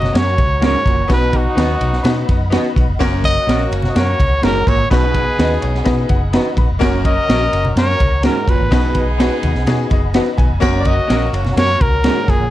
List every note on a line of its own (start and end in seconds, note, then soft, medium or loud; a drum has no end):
0.00 0.83 A#3 medium
0.00 0.83 C#4 medium
0.00 0.82 F#4 loud
0.00 1.08 C#5 medium
0.00 0.18 D#5 loud
0.00 10.58 F#5 medium
0.00 1.08 A#5 medium
0.00 low conga medium
0.04 snare soft
0.13 0.40 F#2 loud
0.13 0.45 A#3 medium
0.13 0.45 C#4 medium
0.13 0.45 F#4 medium
0.13 0.46 C#5 medium
0.13 snare loud
0.13 ride medium
0.17 0.63 C#5 medium
0.38 0.74 C#2 medium
0.38 kick loud
0.38 ride medium
0.38 muted conga medium
0.38 low conga medium
0.60 0.81 G#2 medium
0.60 0.92 A#3 medium
0.60 0.93 C#4 medium
0.60 0.74 C#4 loud
0.60 0.93 F#4 medium
0.60 0.75 F#4 medium
0.60 0.93 A#4 medium
0.60 0.75 A#4 loud
0.60 snare loud
0.60 ride medium
0.60 high conga medium
0.65 1.08 C#5 medium
0.85 1.04 F#1 medium
0.85 1.05 A#2 medium
0.85 kick loud
0.85 ride medium
0.85 high conga medium
1.08 1.45 B1 medium
1.08 1.77 B2 medium
1.08 1.44 B2 medium
1.08 2.73 F#3 medium
1.08 1.40 B3 loud
1.08 2.73 B3 medium
1.08 1.40 D#4 loud
1.08 2.73 D#4 loud
1.08 1.41 F#4 medium
1.08 1.41 B4 loud
1.08 2.99 D#5 medium
1.08 2.99 B5 medium
1.08 kick loud
1.08 snare loud
1.08 ride medium
1.13 1.39 B4 medium
1.33 kick medium
1.33 ride medium
1.33 muted conga medium
1.37 2.31 F#4 medium
1.55 1.75 D#2 medium
1.55 1.87 B3 medium
1.55 1.87 D#4 medium
1.55 1.88 F#4 medium
1.55 1.70 F#4 medium
1.55 1.88 B4 medium
1.55 1.71 B4 loud
1.55 snare loud
1.55 ride loud
1.55 high conga medium
1.60 1.71 D#5 loud
1.80 1.99 B1 loud
1.80 ride medium
1.80 muted conga soft
1.80 low conga medium
1.93 snare soft
2.04 2.22 B2 loud
2.04 2.35 B3 loud
2.04 2.36 D#4 medium
2.04 2.36 F#4 medium
2.04 2.36 B4 loud
2.04 snare loud
2.04 ride medium
2.04 low conga medium
2.28 2.56 F#2 medium
2.28 kick medium
2.28 ride medium
2.28 muted conga medium
2.50 2.83 B3 loud
2.50 2.83 D#4 medium
2.50 2.83 F#4 medium
2.50 2.65 F#4 medium
2.50 2.84 B4 loud
2.50 2.65 B4 medium
2.50 snare loud
2.50 ride medium
2.50 high conga medium
2.55 2.66 D#5 loud
2.76 2.85 B1 loud
2.76 kick medium
2.76 ride medium
2.76 high conga medium
2.87 2.97 F1 medium
2.99 3.36 F#1 loud
2.99 3.34 F#2 loud
2.99 3.31 A#3 loud
2.99 4.63 A#3 medium
2.99 4.63 C#4 medium
2.99 3.31 C#4 loud
2.99 4.63 F#4 loud
2.99 3.31 F#4 loud
2.99 3.32 A#4 loud
2.99 4.89 C#5 medium
2.99 4.89 A#5 medium
2.99 kick loud
2.99 snare loud
2.99 ride medium
3.24 3.69 D#5 loud
3.24 kick loud
3.24 ride medium
3.24 muted conga medium
3.46 3.65 A#1 loud
3.46 3.78 A#3 medium
3.46 3.78 C#4 medium
3.46 3.60 C#4 medium
3.46 3.79 F#4 medium
3.46 3.61 F#4 medium
3.46 3.79 A#4 medium
3.46 3.61 A#4 medium
3.46 snare loud
3.46 ride medium
3.46 high conga medium
3.71 3.89 F#1 medium
3.71 ride medium
3.71 muted conga soft
3.82 snare soft
3.82 low conga medium
3.89 3.98 D#5 medium
3.94 4.13 F#2 loud
3.94 4.26 A#3 medium
3.94 4.26 C#4 medium
3.94 4.27 F#4 medium
3.94 4.27 A#4 medium
3.94 4.45 C#5 loud
3.94 snare loud
3.94 ride medium
4.20 4.37 C#2 medium
4.20 kick medium
4.20 ride medium
4.20 muted conga medium
4.20 low conga medium
4.41 4.61 F#1 loud
4.41 4.62 G#2 medium
4.41 4.73 A#3 medium
4.41 4.74 C#4 medium
4.41 4.56 C#4 medium
4.41 4.74 F#4 medium
4.41 4.56 F#4 medium
4.41 4.74 A#4 medium
4.41 4.70 A#4 loud
4.41 4.57 A#4 medium
4.41 snare loud
4.41 ride medium
4.41 high conga medium
4.67 4.85 G#1 medium
4.67 4.86 A#2 medium
4.67 4.91 C#5 loud
4.67 kick loud
4.67 ride medium
4.67 high conga medium
4.90 5.27 B1 loud
4.90 5.58 B2 medium
4.90 5.25 B2 loud
4.90 5.22 B3 loud
4.90 6.54 B3 medium
4.90 5.22 D#4 medium
4.90 6.54 D#4 medium
4.90 5.22 F#4 medium
4.90 6.54 G#4 loud
4.90 5.82 B4 loud
4.90 5.23 B4 loud
4.90 6.79 D#5 medium
4.90 6.79 B5 medium
4.90 kick loud
4.90 snare loud
4.90 ride medium
5.14 kick medium
5.14 ride medium
5.14 muted conga medium
5.37 5.56 D#2 medium
5.37 5.69 B3 medium
5.37 5.69 D#4 medium
5.37 5.70 F#4 medium
5.37 5.51 F#4 medium
5.37 5.70 B4 medium
5.37 5.52 B4 loud
5.37 5.52 D#5 loud
5.37 snare loud
5.37 ride medium
5.37 high conga medium
5.61 5.80 B1 medium
5.61 5.84 C#5 medium
5.61 ride medium
5.61 muted conga soft
5.61 low conga medium
5.75 snare soft
5.84 6.04 B2 loud
5.84 6.16 B3 medium
5.84 6.16 D#4 medium
5.84 6.17 F#4 medium
5.84 6.17 B4 loud
5.84 6.08 D#5 medium
5.84 kick loud
5.84 snare loud
5.84 ride medium
5.84 low conga medium
6.09 6.36 F#1 medium
6.09 6.32 F#5 medium
6.09 kick medium
6.09 ride medium
6.09 muted conga medium
6.32 6.64 B3 medium
6.32 6.64 D#4 medium
6.32 6.65 F#4 medium
6.32 6.46 F#4 medium
6.32 6.65 B4 medium
6.32 6.47 B4 medium
6.32 6.56 A#5 medium
6.32 snare loud
6.32 ride medium
6.32 high conga medium
6.37 6.47 D#5 medium
6.56 6.66 A#1 loud
6.56 6.80 B5 medium
6.56 kick loud
6.56 ride medium
6.56 high conga medium
6.70 6.78 F1 medium
6.79 7.17 F#1 loud
6.79 7.15 F#2 medium
6.79 7.11 A#3 loud
6.79 7.12 C#4 loud
6.79 8.45 C#4 medium
6.79 7.12 F#4 loud
6.79 8.45 F#4 medium
6.79 7.12 A#4 loud
6.79 8.45 A#4 loud
6.79 8.70 C#5 medium
6.79 8.70 A#5 medium
6.79 kick loud
6.79 snare loud
6.79 ride medium
7.05 7.73 D#5 loud
7.05 kick medium
7.05 ride medium
7.05 muted conga medium
7.28 7.47 A#1 loud
7.28 7.60 A#3 medium
7.28 7.60 C#4 medium
7.28 7.41 C#4 medium
7.28 7.60 F#4 medium
7.28 7.42 F#4 loud
7.28 7.61 A#4 medium
7.28 7.42 A#4 loud
7.28 snare loud
7.28 ride medium
7.28 high conga medium
7.53 7.70 F#1 medium
7.53 ride medium
7.53 muted conga soft
7.65 low conga medium
7.76 7.94 F#2 loud
7.76 8.08 A#3 medium
7.76 8.08 C#4 medium
7.76 8.08 F#4 medium
7.76 8.09 A#4 medium
7.76 8.21 C#5 loud
7.76 snare loud
7.76 ride medium
8.00 8.27 C#2 medium
8.00 kick loud
8.00 ride medium
8.00 muted conga medium
8.00 low conga medium
8.22 8.43 G#2 medium
8.22 8.54 A#3 medium
8.22 8.55 C#4 medium
8.22 8.36 C#4 medium
8.22 8.55 F#4 medium
8.22 8.37 F#4 medium
8.22 8.55 A#4 medium
8.22 8.37 A#4 medium
8.22 8.52 A#4 medium
8.22 snare loud
8.22 ride medium
8.22 high conga medium
8.48 8.57 F#1 medium
8.48 8.67 A#2 medium
8.48 9.20 B4 medium
8.48 kick loud
8.48 ride medium
8.48 high conga medium
8.61 8.69 G#1 medium
8.71 9.28 B1 loud
8.71 9.05 B2 medium
8.71 9.39 B2 medium
8.71 9.02 B3 loud
8.71 10.35 B3 medium
8.71 10.35 D#4 loud
8.71 9.03 D#4 loud
8.71 9.03 F#4 loud
8.71 10.35 G#4 loud
8.71 9.03 B4 loud
8.71 10.61 D#5 medium
8.71 10.61 B5 medium
8.71 kick loud
8.71 snare loud
8.71 ride medium
8.71 muted conga soft
8.95 kick medium
8.95 ride medium
8.95 muted conga medium
9.18 9.50 B3 medium
9.18 9.50 D#4 medium
9.18 9.32 F#4 medium
9.18 9.51 F#4 medium
9.18 9.32 B4 loud
9.18 9.51 B4 loud
9.18 9.32 D#5 medium
9.18 snare loud
9.18 ride medium
9.18 high conga medium
9.43 9.52 D#2 loud
9.43 ride medium
9.43 muted conga soft
9.43 low conga medium
9.55 9.64 B1 medium
9.55 snare soft
9.66 9.84 B2 loud
9.66 9.98 B3 medium
9.66 9.98 D#4 medium
9.66 9.98 F#4 medium
9.66 9.99 G#4 loud
9.66 snare loud
9.66 ride medium
9.66 low conga medium
9.90 10.18 F#1 medium
9.90 10.14 D#5 medium
9.90 kick loud
9.90 ride medium
9.90 muted conga medium
10.14 10.46 B3 medium
10.14 10.46 D#4 medium
10.14 10.27 F#4 medium
10.14 10.46 F#4 medium
10.14 10.27 B4 medium
10.14 10.46 B4 medium
10.14 10.27 D#5 loud
10.14 10.37 F#5 medium
10.14 snare loud
10.14 ride medium
10.14 high conga medium
10.37 10.47 B1 medium
10.37 10.60 G#5 medium
10.37 kick loud
10.37 ride medium
10.37 high conga medium
10.50 10.59 F1 medium
10.60 10.98 F#1 loud
10.60 10.96 F#2 loud
10.60 10.92 A#3 loud
10.60 12.26 A#3 loud
10.60 10.92 C#4 loud
10.60 12.26 C#4 medium
10.60 10.93 F#4 loud
10.60 12.26 F#4 loud
10.60 10.93 A#4 loud
10.60 12.50 C#5 medium
10.60 12.50 A#5 medium
10.60 kick loud
10.60 snare loud
10.60 ride medium
10.60 muted conga soft
10.64 12.50 F#5 medium
10.80 10.88 D5 medium
10.85 11.34 D#5 loud
10.85 kick medium
10.85 ride medium
10.85 muted conga medium
11.07 11.27 A#1 medium
11.07 11.39 A#3 medium
11.07 11.39 C#4 medium
11.07 11.40 F#4 medium
11.07 11.40 A#4 medium
11.07 snare loud
11.07 ride medium
11.07 high conga medium
11.11 11.22 C#4 medium
11.11 11.23 F#4 medium
11.11 11.23 A#4 loud
11.33 11.51 F#1 medium
11.33 ride medium
11.33 muted conga soft
11.45 snare soft
11.45 low conga medium
11.56 11.75 F#2 loud
11.56 11.87 A#3 medium
11.56 11.88 C#4 medium
11.56 11.88 F#4 medium
11.56 11.88 A#4 medium
11.56 11.83 C#5 loud
11.56 snare loud
11.56 ride medium
11.81 12.08 C#2 medium
11.81 12.31 A#4 loud
11.81 kick loud
11.81 ride medium
11.81 muted conga medium
11.81 low conga medium
12.03 12.24 G#2 medium
12.03 12.35 A#3 medium
12.03 12.36 C#4 medium
12.03 12.17 C#4 medium
12.03 12.36 F#4 medium
12.03 12.18 F#4 medium
12.03 12.36 A#4 medium
12.03 12.18 A#4 loud
12.03 snare loud
12.03 ride medium
12.03 high conga medium
12.28 12.37 F#1 medium
12.28 12.47 A#2 medium
12.28 12.50 G#4 medium
12.28 kick loud
12.28 ride medium
12.28 high conga medium
12.40 12.49 A#1 medium